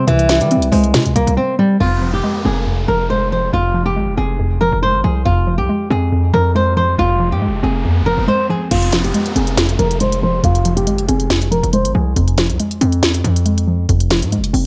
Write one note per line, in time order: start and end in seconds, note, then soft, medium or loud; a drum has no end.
0.00 0.94 G3 medium
0.00 0.50 C4 loud
0.07 0.42 C2 loud
0.07 0.93 C3 loud
0.07 0.39 E3 loud
0.07 closed hi-hat medium
0.19 closed hi-hat medium
0.29 1.37 G4 medium
0.29 snare loud
0.29 closed hi-hat medium
0.41 0.58 E3 loud
0.41 0.71 G3 medium
0.41 closed hi-hat medium
0.51 1.36 C4 loud
0.51 closed hi-hat medium
0.57 0.72 C2 loud
0.62 closed hi-hat medium
0.72 0.96 C2 loud
0.72 1.13 G#3 medium
0.72 1.80 C5 medium
0.72 open hi-hat medium
0.84 closed hi-hat medium
0.94 1.07 C3 loud
0.94 1.81 C3 medium
0.94 snare loud
0.94 closed hi-hat medium
1.05 1.15 C2 loud
1.05 closed hi-hat medium
1.16 1.26 C2 loud
1.16 1.58 G3 medium
1.16 1.33 A#3 medium
1.16 closed hi-hat medium
1.27 1.37 C2 loud
1.27 closed hi-hat medium
1.37 1.80 C4 medium
1.37 1.54 C4 medium
1.59 1.80 G3 medium
1.59 1.76 G3 medium
1.80 2.22 F1 loud
1.80 2.65 F2 medium
1.80 2.11 F4 loud
1.80 downlifter medium
2.02 2.87 F3 medium
2.14 2.43 G4 medium
2.24 3.09 G#3 medium
2.45 2.87 F1 loud
2.45 3.53 C4 medium
2.45 2.86 G#4 medium
2.66 3.51 F2 medium
2.88 3.50 F1 loud
2.88 3.31 F3 medium
2.88 3.05 A#4 medium
3.10 3.95 G#3 medium
3.10 3.27 C5 medium
3.32 3.73 F3 medium
3.32 3.49 C5 medium
3.53 3.98 F1 loud
3.53 4.38 F2 medium
3.53 3.84 F4 loud
3.74 4.60 F3 medium
3.86 4.16 G4 medium
3.96 4.09 G#1 loud
3.96 4.81 G#3 medium
4.08 4.17 F1 medium
4.17 4.62 F1 loud
4.17 5.26 C4 medium
4.17 4.58 G#4 medium
4.39 5.25 F2 medium
4.61 4.72 E1 loud
4.61 5.04 F3 medium
4.61 4.78 A#4 medium
4.72 4.95 F1 loud
4.82 5.68 G#3 medium
4.82 5.00 C5 medium
4.94 5.04 G#1 medium
5.04 5.25 C2 loud
5.04 5.46 F3 medium
5.04 5.21 G#4 medium
5.25 5.60 F1 loud
5.25 6.11 F2 loud
5.25 5.57 F4 loud
5.25 riser medium
5.47 6.32 F3 medium
5.58 5.68 C2 medium
5.58 5.88 G4 medium
5.69 6.54 G#3 medium
5.90 6.32 F2 loud
5.90 6.98 C4 medium
5.90 6.31 G#4 medium
6.12 6.97 F2 medium
6.34 6.96 F2 loud
6.34 6.76 F3 medium
6.34 6.51 A#4 medium
6.55 7.41 G#3 medium
6.55 6.73 C5 medium
6.77 7.18 F3 medium
6.77 6.94 C5 medium
6.98 7.33 F1 loud
6.98 7.84 F2 loud
6.98 7.30 F4 loud
7.20 8.05 F3 medium
7.31 7.49 G#2 medium
7.31 7.62 G4 medium
7.42 8.26 G#3 medium
7.47 7.62 F1 medium
7.63 7.86 F1 loud
7.63 8.71 C4 medium
7.63 8.04 G#4 medium
7.85 8.70 F2 medium
7.85 8.03 F2 loud
8.01 8.17 F1 medium
8.06 8.48 F3 medium
8.06 8.23 A#4 medium
8.18 8.28 F1 loud
8.28 8.71 G#3 medium
8.28 8.45 C5 medium
8.49 8.71 F3 medium
8.49 8.67 G#4 medium
8.71 9.13 F1 loud
8.71 9.56 F2 loud
8.71 9.02 F4 loud
8.71 closed hi-hat medium
8.71 crash loud
8.71 downlifter medium
8.82 closed hi-hat medium
8.92 9.78 F3 medium
8.92 snare loud
8.92 closed hi-hat medium
9.04 9.34 G4 medium
9.04 closed hi-hat medium
9.14 9.99 G#3 loud
9.14 closed hi-hat medium
9.26 closed hi-hat soft
9.36 9.77 F1 loud
9.36 10.44 C4 medium
9.36 9.77 G#4 medium
9.36 closed hi-hat medium
9.47 closed hi-hat soft
9.57 10.42 F2 medium
9.57 snare loud
9.57 closed hi-hat medium
9.69 closed hi-hat medium
9.79 10.41 F1 loud
9.79 10.21 F3 medium
9.79 9.96 A#4 medium
9.79 closed hi-hat medium
9.91 closed hi-hat medium
10.00 10.86 G#3 medium
10.00 10.18 C5 medium
10.00 closed hi-hat medium
10.12 closed hi-hat medium
10.22 10.64 F3 medium
10.22 10.40 C5 medium
10.43 10.88 F1 loud
10.43 11.29 F2 loud
10.43 10.75 F4 loud
10.43 closed hi-hat medium
10.55 closed hi-hat medium
10.65 11.50 F3 medium
10.65 closed hi-hat medium
10.77 11.06 G4 medium
10.77 closed hi-hat medium
10.87 11.00 G#1 loud
10.87 11.72 G#3 medium
10.87 closed hi-hat medium
10.98 11.08 F1 medium
10.98 closed hi-hat soft
11.08 11.53 F1 loud
11.08 12.16 C4 medium
11.08 11.49 G#4 medium
11.08 closed hi-hat medium
11.20 closed hi-hat soft
11.30 12.15 F2 medium
11.30 snare loud
11.30 closed hi-hat medium
11.42 closed hi-hat medium
11.51 11.62 E1 loud
11.51 11.94 F3 medium
11.51 11.69 A#4 medium
11.51 closed hi-hat medium
11.63 11.86 F1 loud
11.63 closed hi-hat medium
11.73 12.59 G#3 medium
11.73 11.90 C5 medium
11.73 closed hi-hat medium
11.85 11.94 G#1 loud
11.85 closed hi-hat medium
11.95 12.16 C2 loud
11.95 12.36 F3 medium
11.95 12.12 G#4 medium
12.16 12.51 F1 loud
12.16 13.02 F2 loud
12.16 closed hi-hat medium
12.28 closed hi-hat medium
12.38 13.23 F3 medium
12.38 snare loud
12.38 closed hi-hat medium
12.49 12.59 C2 loud
12.49 closed hi-hat medium
12.60 13.44 G#3 medium
12.60 closed hi-hat medium
12.71 closed hi-hat soft
12.81 13.23 F2 loud
12.81 13.89 C4 medium
12.81 closed hi-hat medium
12.92 closed hi-hat soft
13.03 13.88 F2 medium
13.03 snare loud
13.03 closed hi-hat medium
13.14 closed hi-hat medium
13.24 13.86 F2 loud
13.24 13.66 F3 medium
13.24 closed hi-hat medium
13.36 closed hi-hat medium
13.46 14.31 G#3 medium
13.46 closed hi-hat medium
13.58 closed hi-hat medium
13.67 14.09 F3 medium
13.89 14.24 F1 loud
13.89 14.66 F2 loud
13.89 closed hi-hat medium
14.00 closed hi-hat medium
14.10 14.66 F3 medium
14.10 snare loud
14.10 closed hi-hat medium
14.22 14.39 G#2 medium
14.22 closed hi-hat medium
14.32 14.66 G#3 medium
14.32 closed hi-hat medium
14.38 14.53 F1 loud
14.44 closed hi-hat medium
14.53 14.66 F1 loud
14.53 14.66 C4 medium
14.53 open hi-hat medium